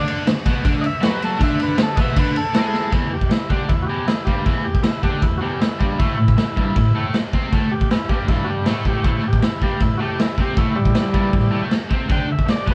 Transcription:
Already playing: D3 D4
0.08 ride
0.27 D3, snare, ride
0.46 B2 B3, kick, ride
0.64 D3 D4, kick, ride
0.81 D#5, ride
0.86 E5
1.01 F#3 F#4, snare, ride
1.06 B4
1.22 A4, ride
1.39 D3 D4, kick, ride
1.43 E5
1.59 B4, ride
1.78 D3, snare, ride
1.83 A4
1.96 B2 B3 D#5, kick, ride
2.01 E5
2.16 D3 D4 B4, kick, ride
2.36 A4, ride
2.54 G#3 E4 G#4 A4, snare, ride
2.74 snare
2.92 E2 E3, kick, crash
3.11 E2 G4
3.21 kick
3.30 E4, muted overdriven electric guitar stroke, snare, crash
3.50 D3 D4 G4, kick
3.68 E2 E4, kick, crash
3.82 F#4
3.87 E2 E3 G4
4.07 E4, muted overdriven electric guitar stroke, snare, crash
4.24 G2 G3 G4, kick
4.45 E2 E3 E4, kick, crash
4.64 E2 G4
4.75 kick
4.83 E4, muted overdriven electric guitar stroke, snare, crash
5.03 D3 D4 G4, kick
5.22 E2 E4, kick, crash
5.38 E2 F#4
5.42 E3 G4
5.61 E4, muted overdriven electric guitar stroke, snare, crash
5.79 G2 G3 G4, kick
5.99 A2 A3 E4, kick, crash
6.17 A2 E4
6.28 kick
6.38 muted overdriven electric guitar stroke, snare, crash
6.57 G2 G3, kick
6.76 A2, kick, crash
6.95 A2 A3
7.14 muted overdriven electric guitar stroke, snare, crash
7.33 C3 C4, kick
7.52 A2 A3, kick, crash
7.71 A2 G4
7.81 kick
7.91 E4, muted overdriven electric guitar stroke, snare, crash
8.09 G2 G3 G4, kick
8.28 G2 G3 E4, kick, crash
8.44 F#4
8.50 G4
8.66 A2 A3 E4, snare, crash
8.85 G4, kick
9.04 A2 A3 E4, kick, crash
9.23 A2
9.28 G4
9.33 kick
9.42 E4, muted overdriven electric guitar stroke, snare, crash
9.62 G2 G3 G4, kick
9.80 A2 E4, kick, crash
9.97 A2 A3 F#4
10.02 G4
10.19 E4, muted overdriven electric guitar stroke, snare, crash
10.38 C3 C4 G4, kick
10.56 A2 A3 E4, kick, crash
10.76 A2 G3 E4
10.85 kick
10.95 muted overdriven electric guitar stroke, snare, crash
11.13 G2 G3, kick
11.32 A2, kick, crash
11.50 A2 A3
11.70 muted overdriven electric guitar stroke, snare, crash
11.90 C3 C4, kick
12.09 D3 D4 G5, kick, crash
12.29 D3 E5
12.39 kick
12.47 D5, muted overdriven electric guitar stroke, snare, crash
12.67 B2 B3 B4, kick

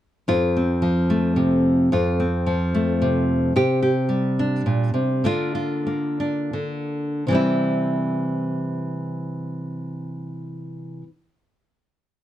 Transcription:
0.28 F2 F4
0.57 C4
0.82 F3
1.10 A3
1.36 C3
1.92 F2 F4
2.20 C4
2.46 F3
2.75 A3
3.02 C3
3.56 C3 G4
3.83 G4
4.09 G3
4.39 D4
4.66 A#2
4.94 C3
5.24 D3 A#3 D4 F4
5.55 F4
5.87 A#3
6.20 D4
6.53 D3
7.27 C3 E3 G3
7.32 C4 E4

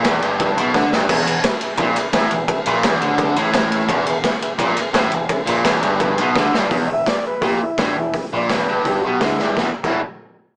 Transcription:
0.02 E1 E2 G#4 B4 E5, kick, snare, ride
0.22 G1 G2 G#4 B4 E5, ride
0.38 G#4 B4 E5, kick, ride
0.57 B1 B2 G#4 B4 E5, ride
0.72 D2 D3 G#4 B4 E5, kick, snare
0.92 G1 G2 G#4 B4 E5, snare
1.09 E1 E2 G#4 B4 E5, kick, crash
1.27 E1 E2 G#4 B4 F#5, ride
1.43 G#4 B4 E5, kick, snare, ride
1.61 G#4 B4 E5, ride
1.77 A#1 A#2 G#4 E5, kick, ride
1.81 B4
1.96 G#4 B4 E5, muted overdriven electric guitar stroke, muted picked electric bass stroke, ride
2.13 A1 A2 G#4 B4 E5, kick, snare, ride
2.31 E1 E2 G#4 B4 E5, ride
2.48 G#4 B4 E5, kick, ride
2.66 A#1 A#2 G#4 B4 E5, ride
2.83 E1 E2 G#4 B4 E5, kick, snare, ride
3.01 D2 D3 G#4 B4 C#5, ride
3.18 kick, ride
3.23 G#4 B4 E5
3.36 A1 A2, ride
3.42 G#4 B4 E5
3.54 G#4 B4 E5, kick, snare, ride
3.72 G#4 B4, ride
3.76 E5
3.89 E1 E2 G#4, kick, ride
3.93 B4 E5
4.06 E1 E2 G#4 B4 E5, ride
4.24 G#4 B4 E5, kick, snare, ride
4.42 G#4 B4 E5, ride
4.58 A#1 A#2 G#4, kick, ride
4.63 B4 E5
4.76 B4 E5, muted overdriven electric guitar stroke, muted picked electric bass stroke, ride
4.81 G#4
4.93 A1 A2 G#4 E5, kick, snare, ride
4.98 B4
5.11 E1 E2 G#4 B4 E5, ride
5.29 G#4 B4 E5, kick, ride
5.46 A#1 A#2 G#4 B4 E5, ride
5.63 E1 E2 G#4 B4 E5, kick, snare, ride
5.83 G1 G2 G#4 B4 E5, ride
6.00 G#4 B4 E5, kick, ride
6.18 B1 B2 G#4 B4 E5, ride
6.35 D2 D3 G#4 B4 E5, kick, snare
6.54 G1 G2 G#4 B4 E5, snare
6.71 E1 E2 G#4 B4 E5, kick, open hi-hat
6.87 E1 E2 G#4 D#5 E5
6.92 B4 E5
7.06 G#4 B4 D5 E5, kick, snare, open hi-hat
7.24 G#4 B4 E5
7.41 A#1 A#2 G4 G#4 B4 E5, kick, open hi-hat
7.59 E4 G#4 B4 E5, muted overdriven electric guitar stroke, muted picked electric bass stroke
7.78 A1 A2 D4 G#4 B4 C#5, kick, snare, open hi-hat
7.94 E1 E2 G#4 B4 D5
8.00 E4
8.12 G#4 B4 E5, kick, open hi-hat
8.33 A#1 A#2 G#4 B4 E5
8.37 D5
8.49 E1 E2 G#4 B4 E5, kick, snare, open hi-hat
8.53 B4
8.67 G1 G2 G#4 B4 E5
8.85 G4 G#4 B4 E5, kick, open hi-hat
9.01 B1 B2 F#4 G#4 B4
9.05 G4 E5
9.20 D2 D3 G#3 G#4 B4 E5, kick, snare, open hi-hat
9.26 E4
9.39 G1 G2 G#4 B4 E5, snare
9.55 E1 E2 B2 G#4 B4 E5, kick, snare
9.59 E3 E4
9.83 E1 E2 B2 E3 E4, kick, crash

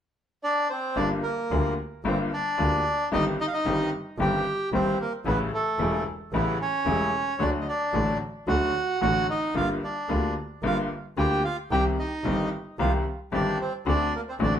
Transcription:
0.43 D4 D5
0.70 C4 C5
0.96 G1 G2 D3 G3 A#3 D4 F4 D5
1.23 A#3 A#4
1.51 D2 D3 G3 A#3 F4
2.04 G1 G2 D3 G3 A#3 C4 F4 C5
2.33 D4 D5
2.58 D2 D3 G3 A#3 F4
3.12 G1 G2 D#3 G3 C4 D#4 G4 D#5
3.40 D#4 D#5
3.48 F5
3.53 D#4 D#5
3.65 G1 G2 D#3 G3 C4 G4
4.18 G1 G2 D#3 G3 C4 G4 G5
4.72 G1 G2 D#3 G3 C4 G4 C5
5.00 A#3 A#4
5.25 A1 A2 C#3 G3 A3 B3 E4 B4
5.53 A3 A4
5.79 E1 E2 C#3 G3 A3 E4
6.32 A1 A2 C#3 G3 A3 B3 E4 B4
6.61 C#4 C#5
6.86 E1 E2 C#3 G3 A3 E4
7.39 D2 D3 F#3 A3 D4 F#4 D5
7.61 D#5
7.68 D4 D5
7.93 A1 A2 D3 F#3 A3 F#4
8.47 D2 D3 F#3 A3 F#4 F#5
9.01 A1 A2 D3 F#3 A3 F#4 F#5
9.30 D#4 D#5
9.55 G1 G2 D3 G3 A#3 F4 F5
9.84 D4 D5
10.09 D2 D3 G3 A#3 F4
10.62 G1 G2 D3 G3 A#3 F4 F5
11.17 D2 D3 G3 A#3 F4 G4 G5
11.45 F4 F5
11.70 C2 C3 D#3 G3 C4 G4 G5
11.99 D#4 D#5
12.24 G1 G2 D#3 G3 C4 G4
12.78 C2 C3 D#3 G3 C4 F4 G4 F5
13.32 G1 G2 D#3 G3 C4 D4 G4 D5
13.61 C4 C5
13.86 D2 D3 A3 C4 D4 F#4 D5
14.15 A#3 A#4
14.29 C4 C5
14.40 A1 A2 D3 A3 C4 F#4 D5
14.44 D4

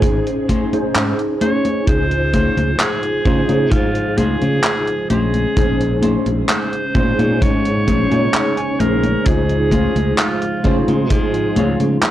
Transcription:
Already playing: C#4 D#4 G#4 C5
0.02 G#1, kick, closed hi-hat, high conga
0.27 closed hi-hat
0.48 C#4 D#4 G#4 C5, kick, closed hi-hat, high conga
0.72 C#4 D#4 G#4 C5, muted fingered electric bass stroke, closed hi-hat, high conga
0.95 G#2, clap, closed hi-hat, high conga
1.19 closed hi-hat
1.41 C#4 D#4 G#4 C5 C#5, closed hi-hat, high conga
1.65 closed hi-hat, high conga
1.86 C#2 C#3 F3 G#3 D#4 F4 G#4 C5, kick, closed hi-hat, high conga
2.11 closed hi-hat
2.33 C#4 F4 G#4 C5, kick, closed hi-hat, high conga
2.57 C#2, closed hi-hat, high conga
2.79 G#4, clap, closed hi-hat, high conga
3.03 closed hi-hat
3.25 C#3 C#4 D#4 F4 G#4 C5, kick, closed hi-hat, high conga
3.48 C#3 D#4 F4 G#4 C5, closed hi-hat, high conga
3.72 G#2 F4, kick, closed hi-hat, high conga
3.95 closed hi-hat
4.17 C#2 C#4 F4 G#4 C5, closed hi-hat, high conga
4.42 C#3, closed hi-hat, high conga
4.64 clap, closed hi-hat, high conga
4.88 closed hi-hat
5.10 A#1 A#3 C#4 D#4 G#4 C5, closed hi-hat, high conga
5.34 closed hi-hat, high conga
5.55 A#1 C#4 D#4 G#4 C5, kick, closed hi-hat, high conga
5.81 closed hi-hat
6.01 C#4 D#4 G#4 C5, closed hi-hat, high conga
6.26 A#1, closed hi-hat, high conga
6.49 C5, clap, closed hi-hat, high conga
6.73 closed hi-hat
6.94 A#2 C#4 D#4 G#4 C5, kick, closed hi-hat, high conga
7.18 A#2 C#4 D#4 G#4 C#5, closed hi-hat, high conga
7.42 G#2 C#5, kick, closed hi-hat, high conga
7.65 closed hi-hat
7.86 A#1 C#4 D#4 G#4 C5, kick, closed hi-hat, high conga
8.10 A#2 C#4 D#4 G#4 C#5, closed hi-hat, high conga
8.33 D#5, clap, closed hi-hat, high conga
8.57 G#5, closed hi-hat
8.79 A#1 C#4 D#4 G#4 A#4 C5, closed hi-hat, high conga
9.03 closed hi-hat, high conga
9.24 C#2 F3 D#4 F4 G#4 C5, kick, closed hi-hat, high conga
9.49 closed hi-hat
9.71 C#4 F4 G#4 C5, kick, closed hi-hat, high conga
9.96 C#2, closed hi-hat, high conga
10.18 F4, clap, closed hi-hat, high conga
10.42 closed hi-hat
10.63 C#3 C#4 D#4 F4 G#4 C5, kick, closed hi-hat, high conga
10.86 C#3 D#4 F4 G#4 C6, closed hi-hat, high conga
11.10 G#2 G#4, kick, closed hi-hat, high conga
11.34 closed hi-hat
11.56 C#2 C#4 F4 G#4 C#5, closed hi-hat, high conga
11.80 C#3, closed hi-hat, high conga
12.03 clap, closed hi-hat, high conga

